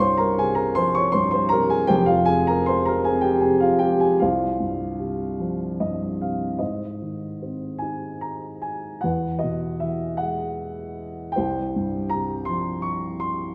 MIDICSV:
0, 0, Header, 1, 2, 480
1, 0, Start_track
1, 0, Tempo, 766284
1, 1203, Time_signature, 6, 3, 24, 8
1, 3123, Tempo, 808625
1, 5523, Tempo, 787402
1, 6483, Tempo, 750000
1, 8366, End_track
2, 0, Start_track
2, 0, Title_t, "Grand piano"
2, 0, Program_c, 0, 0
2, 0, Control_c, 0, 64, 127
2, 0, Note_on_c, 0, 36, 69
2, 0, Note_on_c, 0, 43, 51
2, 0, Note_on_c, 0, 73, 75
2, 0, Note_on_c, 0, 84, 109
2, 0, Note_on_c, 0, 85, 102
2, 6, Note_on_c, 0, 72, 83
2, 109, Note_on_c, 0, 82, 93
2, 118, Note_off_c, 0, 72, 0
2, 121, Note_on_c, 0, 70, 76
2, 124, Note_off_c, 0, 84, 0
2, 229, Note_off_c, 0, 82, 0
2, 236, Note_off_c, 0, 70, 0
2, 237, Note_on_c, 0, 48, 53
2, 241, Note_on_c, 0, 80, 98
2, 247, Note_on_c, 0, 68, 74
2, 344, Note_on_c, 0, 82, 94
2, 353, Note_on_c, 0, 70, 75
2, 359, Note_off_c, 0, 68, 0
2, 368, Note_off_c, 0, 80, 0
2, 470, Note_on_c, 0, 84, 113
2, 472, Note_off_c, 0, 70, 0
2, 480, Note_off_c, 0, 82, 0
2, 484, Note_on_c, 0, 72, 83
2, 490, Note_on_c, 0, 53, 62
2, 594, Note_off_c, 0, 85, 0
2, 594, Note_on_c, 0, 85, 109
2, 597, Note_off_c, 0, 72, 0
2, 603, Note_off_c, 0, 84, 0
2, 611, Note_off_c, 0, 73, 0
2, 611, Note_on_c, 0, 73, 72
2, 702, Note_on_c, 0, 84, 101
2, 709, Note_off_c, 0, 43, 0
2, 713, Note_on_c, 0, 72, 76
2, 718, Note_on_c, 0, 43, 57
2, 721, Note_off_c, 0, 73, 0
2, 724, Note_off_c, 0, 85, 0
2, 811, Note_off_c, 0, 84, 0
2, 821, Note_on_c, 0, 84, 95
2, 829, Note_off_c, 0, 72, 0
2, 839, Note_on_c, 0, 72, 84
2, 932, Note_on_c, 0, 82, 113
2, 951, Note_on_c, 0, 70, 92
2, 953, Note_off_c, 0, 72, 0
2, 956, Note_off_c, 0, 48, 0
2, 957, Note_off_c, 0, 84, 0
2, 966, Note_on_c, 0, 48, 61
2, 1064, Note_on_c, 0, 80, 100
2, 1069, Note_off_c, 0, 70, 0
2, 1070, Note_on_c, 0, 68, 79
2, 1072, Note_off_c, 0, 82, 0
2, 1173, Note_off_c, 0, 36, 0
2, 1174, Note_on_c, 0, 79, 111
2, 1178, Note_on_c, 0, 72, 77
2, 1180, Note_on_c, 0, 67, 78
2, 1183, Note_off_c, 0, 53, 0
2, 1184, Note_off_c, 0, 43, 0
2, 1187, Note_off_c, 0, 68, 0
2, 1191, Note_on_c, 0, 29, 75
2, 1191, Note_on_c, 0, 41, 85
2, 1196, Note_off_c, 0, 48, 0
2, 1197, Note_off_c, 0, 80, 0
2, 1213, Control_c, 0, 64, 0
2, 1291, Note_on_c, 0, 77, 92
2, 1298, Note_off_c, 0, 79, 0
2, 1300, Note_off_c, 0, 72, 0
2, 1301, Note_off_c, 0, 67, 0
2, 1307, Note_on_c, 0, 65, 80
2, 1340, Control_c, 0, 64, 127
2, 1412, Note_on_c, 0, 80, 113
2, 1425, Note_off_c, 0, 65, 0
2, 1426, Note_on_c, 0, 68, 84
2, 1430, Note_off_c, 0, 77, 0
2, 1441, Note_on_c, 0, 48, 57
2, 1544, Note_off_c, 0, 68, 0
2, 1548, Note_on_c, 0, 82, 101
2, 1550, Note_off_c, 0, 80, 0
2, 1561, Note_on_c, 0, 70, 77
2, 1667, Note_on_c, 0, 84, 98
2, 1672, Note_off_c, 0, 70, 0
2, 1678, Note_off_c, 0, 82, 0
2, 1682, Note_on_c, 0, 56, 57
2, 1684, Note_on_c, 0, 72, 77
2, 1788, Note_on_c, 0, 82, 94
2, 1794, Note_off_c, 0, 72, 0
2, 1798, Note_off_c, 0, 84, 0
2, 1806, Note_on_c, 0, 70, 77
2, 1907, Note_on_c, 0, 80, 91
2, 1915, Note_off_c, 0, 70, 0
2, 1918, Note_off_c, 0, 82, 0
2, 1919, Note_on_c, 0, 68, 82
2, 1928, Note_on_c, 0, 60, 58
2, 2012, Note_on_c, 0, 79, 93
2, 2029, Note_on_c, 0, 67, 71
2, 2032, Note_off_c, 0, 68, 0
2, 2038, Note_off_c, 0, 80, 0
2, 2133, Note_on_c, 0, 80, 85
2, 2137, Note_off_c, 0, 79, 0
2, 2146, Note_off_c, 0, 67, 0
2, 2151, Note_off_c, 0, 48, 0
2, 2154, Note_on_c, 0, 68, 75
2, 2161, Note_on_c, 0, 48, 64
2, 2257, Note_on_c, 0, 77, 86
2, 2269, Note_off_c, 0, 68, 0
2, 2269, Note_on_c, 0, 65, 72
2, 2271, Note_off_c, 0, 80, 0
2, 2373, Note_on_c, 0, 79, 97
2, 2385, Note_off_c, 0, 65, 0
2, 2390, Note_off_c, 0, 56, 0
2, 2393, Note_off_c, 0, 77, 0
2, 2393, Note_on_c, 0, 67, 75
2, 2399, Note_on_c, 0, 56, 58
2, 2506, Note_on_c, 0, 80, 85
2, 2508, Note_off_c, 0, 67, 0
2, 2510, Note_off_c, 0, 79, 0
2, 2523, Note_on_c, 0, 68, 71
2, 2607, Note_off_c, 0, 29, 0
2, 2607, Note_off_c, 0, 41, 0
2, 2621, Note_off_c, 0, 60, 0
2, 2624, Note_off_c, 0, 48, 0
2, 2630, Note_on_c, 0, 77, 78
2, 2631, Note_off_c, 0, 56, 0
2, 2632, Note_off_c, 0, 68, 0
2, 2635, Note_off_c, 0, 80, 0
2, 2640, Note_on_c, 0, 65, 60
2, 2643, Note_on_c, 0, 72, 56
2, 2644, Note_on_c, 0, 36, 71
2, 2646, Control_c, 0, 64, 0
2, 2770, Control_c, 0, 64, 127
2, 2883, Note_on_c, 0, 43, 51
2, 3128, Note_on_c, 0, 48, 47
2, 3368, Note_on_c, 0, 53, 55
2, 3578, Note_off_c, 0, 77, 0
2, 3582, Note_off_c, 0, 65, 0
2, 3584, Note_off_c, 0, 72, 0
2, 3600, Note_off_c, 0, 43, 0
2, 3608, Note_on_c, 0, 75, 63
2, 3609, Note_on_c, 0, 43, 53
2, 3829, Note_off_c, 0, 75, 0
2, 3844, Note_off_c, 0, 48, 0
2, 3853, Note_on_c, 0, 48, 44
2, 3853, Note_on_c, 0, 77, 56
2, 4060, Note_off_c, 0, 36, 0
2, 4062, Note_off_c, 0, 53, 0
2, 4068, Note_off_c, 0, 43, 0
2, 4069, Note_off_c, 0, 77, 0
2, 4073, Note_on_c, 0, 75, 59
2, 4078, Note_off_c, 0, 48, 0
2, 4081, Note_on_c, 0, 72, 44
2, 4082, Note_on_c, 0, 44, 53
2, 4090, Control_c, 0, 64, 0
2, 4203, Control_c, 0, 64, 127
2, 4331, Note_on_c, 0, 51, 40
2, 4568, Note_on_c, 0, 60, 42
2, 4779, Note_off_c, 0, 72, 0
2, 4784, Note_on_c, 0, 80, 71
2, 4805, Note_on_c, 0, 63, 46
2, 4820, Note_off_c, 0, 75, 0
2, 5038, Note_on_c, 0, 82, 75
2, 5045, Note_off_c, 0, 80, 0
2, 5270, Note_off_c, 0, 51, 0
2, 5278, Note_on_c, 0, 80, 73
2, 5290, Note_off_c, 0, 82, 0
2, 5502, Note_off_c, 0, 44, 0
2, 5505, Note_off_c, 0, 63, 0
2, 5506, Note_off_c, 0, 60, 0
2, 5511, Note_on_c, 0, 78, 76
2, 5528, Note_off_c, 0, 80, 0
2, 5529, Note_on_c, 0, 40, 64
2, 5531, Note_on_c, 0, 71, 57
2, 5532, Control_c, 0, 64, 0
2, 5652, Control_c, 0, 64, 127
2, 5742, Note_on_c, 0, 75, 75
2, 5767, Note_off_c, 0, 78, 0
2, 5771, Note_on_c, 0, 47, 44
2, 5993, Note_on_c, 0, 76, 73
2, 6003, Note_off_c, 0, 75, 0
2, 6011, Note_on_c, 0, 52, 49
2, 6220, Note_on_c, 0, 78, 81
2, 6222, Note_off_c, 0, 76, 0
2, 6225, Note_off_c, 0, 71, 0
2, 6246, Note_on_c, 0, 56, 57
2, 6706, Note_off_c, 0, 47, 0
2, 6751, Note_off_c, 0, 78, 0
2, 6941, Note_on_c, 0, 79, 86
2, 6949, Note_off_c, 0, 40, 0
2, 6949, Note_off_c, 0, 52, 0
2, 6950, Note_off_c, 0, 56, 0
2, 6968, Note_on_c, 0, 72, 69
2, 6977, Note_on_c, 0, 36, 68
2, 6981, Control_c, 0, 64, 0
2, 7093, Control_c, 0, 64, 127
2, 7223, Note_on_c, 0, 43, 52
2, 7438, Note_on_c, 0, 82, 93
2, 7450, Note_off_c, 0, 79, 0
2, 7457, Note_on_c, 0, 48, 47
2, 7659, Note_off_c, 0, 72, 0
2, 7663, Note_off_c, 0, 82, 0
2, 7667, Note_on_c, 0, 84, 92
2, 7691, Note_on_c, 0, 53, 49
2, 7903, Note_on_c, 0, 85, 80
2, 7921, Note_off_c, 0, 84, 0
2, 8142, Note_off_c, 0, 43, 0
2, 8143, Note_on_c, 0, 84, 87
2, 8160, Note_off_c, 0, 85, 0
2, 8366, Note_off_c, 0, 36, 0
2, 8366, Note_off_c, 0, 48, 0
2, 8366, Note_off_c, 0, 53, 0
2, 8366, Note_off_c, 0, 84, 0
2, 8366, End_track
0, 0, End_of_file